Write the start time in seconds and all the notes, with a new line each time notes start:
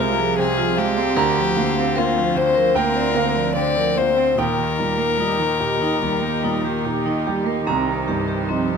Already playing: C2 G#3 C4 F4 C5 G5 G#5
0.00 C3 F4 A#4
0.17 F3 G#4
0.38 C3 C4 G#4
0.58 F3 F4
0.77 G#3 F4 G4 G#4
0.97 C4 C5
1.16 D2 D3 C4 A#4 C5 A#5
1.38 F3
1.56 D3 A#3 F5
1.76 C4 F5
1.96 A#3 C4 F4 A#4
2.18 F3
2.35 D3 F4 C5
2.55 F3 A#4
2.74 D2 A#3 A#4 G5
2.95 C4 D5
3.14 D3 A#3 A#4 F5
3.36 F3 D5
3.56 D3 C4 D5
3.76 F3 A#4
3.96 A#3 F4 C5 D5
4.17 C4 F5
4.37 D#2 A#2 D#4 G4 A#4 G5
4.58 D#3
4.79 A#2 G3 A#4
4.99 A#3 A#4
5.19 G3 D#4
5.40 D#3
5.60 A#2 G4
5.82 D#3 D#4
6.01 D#2 G3
6.21 A#3 G4
6.43 A#2 G3 D#4
6.63 D#3 G4
6.84 A#2 D#4 G4
7.05 D#3 D#4
7.27 G3 G4
7.46 A#3 A#4
7.66 C2 D#3 C4 C5 A#5
8.08 G2 G4
8.28 G4
8.49 F3 C4 D#4